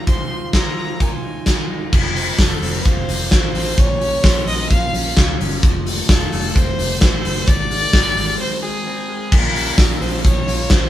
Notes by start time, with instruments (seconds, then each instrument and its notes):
Already playing: clean electric guitar D#4 F4
0.07 clean electric guitar F3 C5, violin C6, kick, closed hi-hat
0.31 clean electric guitar F4
0.53 clean electric guitar C5, violin A#5, kick, snare, closed hi-hat
0.77 clean electric guitar F4
1.00 clean electric guitar A#4, violin G#5, kick, closed hi-hat
1.12 clean electric guitar C5
1.23 clean electric guitar D#4
1.46 clean electric guitar D#4, kick, snare, closed hi-hat
1.58 clean electric guitar F4
1.70 clean electric guitar D#4
1.93 fingered electric bass F1, clean electric guitar F3, kick, crash
2.16 clean electric guitar C4, hi-hat pedal, open hi-hat
2.38 fingered electric bass F1, clean electric guitar A4, violin A4, kick, snare, hi-hat pedal, open hi-hat
2.62 fingered electric bass F1, clean electric guitar C4, hi-hat pedal, open hi-hat
2.85 fingered electric bass F1, clean electric guitar F4, violin C5, kick, hi-hat pedal, open hi-hat
3.08 fingered electric bass F1, clean electric guitar C4, hi-hat pedal, open hi-hat
3.31 fingered electric bass A1, clean electric guitar F4, violin C5, kick, snare, hi-hat pedal, open hi-hat
3.54 fingered electric bass A1, clean electric guitar C4, hi-hat pedal, open hi-hat
3.78 fingered electric bass A#1, clean electric guitar A#2, violin C#5, kick, hi-hat pedal, open hi-hat
4.01 clean electric guitar C#4, hi-hat pedal, open hi-hat
4.24 fingered electric bass A#1, clean electric guitar C5, kick, snare, hi-hat pedal, open hi-hat
4.46 fingered electric bass A#1, clean electric guitar C#4, violin D#5, hi-hat pedal, open hi-hat
4.70 fingered electric bass A#1, clean electric guitar F4, violin F5, kick, hi-hat pedal, open hi-hat
4.93 fingered electric bass A#1, clean electric guitar C#4, hi-hat pedal, open hi-hat
5.17 fingered electric bass C#2, clean electric guitar F4, kick, snare, hi-hat pedal, open hi-hat
5.40 fingered electric bass F#1, clean electric guitar C#4, hi-hat pedal, open hi-hat
5.63 fingered electric bass F1, clean electric guitar F3, kick, hi-hat pedal, open hi-hat
5.86 clean electric guitar A3, hi-hat pedal, open hi-hat
6.09 fingered electric bass F1, clean electric guitar F4, violin A4, kick, snare, hi-hat pedal, open hi-hat
6.32 fingered electric bass F1, clean electric guitar A3, hi-hat pedal, open hi-hat
6.55 fingered electric bass F1, clean electric guitar C4, violin C5, kick, hi-hat pedal, open hi-hat
6.78 fingered electric bass F1, clean electric guitar A3, hi-hat pedal, open hi-hat
7.00 fingered electric bass A1, clean electric guitar A#3, violin C5, kick, snare
7.13 clean electric guitar C4
7.25 fingered electric bass F#1, clean electric guitar A3, hi-hat pedal, open hi-hat
7.47 fingered electric bass G#1, clean electric guitar G#2, violin D5, kick, hi-hat pedal, open hi-hat
7.71 clean electric guitar G#3, hi-hat pedal, open hi-hat
7.93 fingered electric bass G#1, clean electric guitar D#4, kick, snare, hi-hat pedal, open hi-hat
8.16 fingered electric bass G#1, clean electric guitar G#3, hi-hat pedal, open hi-hat
8.40 clean electric guitar C4, violin C5
8.62 clean electric guitar G#3, violin G#4
8.86 clean electric guitar C4
9.09 clean electric guitar G#3
9.32 fingered electric bass A#1, clean electric guitar A#2 F4, violin A#4, kick, crash
9.55 clean electric guitar C#4, hi-hat pedal, open hi-hat
9.78 fingered electric bass A#1, clean electric guitar F4, kick, snare, hi-hat pedal, open hi-hat
10.01 fingered electric bass A#1, clean electric guitar C#4, violin C5, hi-hat pedal, open hi-hat
10.24 fingered electric bass A#1, clean electric guitar F3, violin C#5, kick, hi-hat pedal, open hi-hat
10.47 fingered electric bass A#1, clean electric guitar F4, hi-hat pedal, open hi-hat
10.70 fingered electric bass A#1, clean electric guitar C#4, violin C5, kick, snare, hi-hat pedal, open hi-hat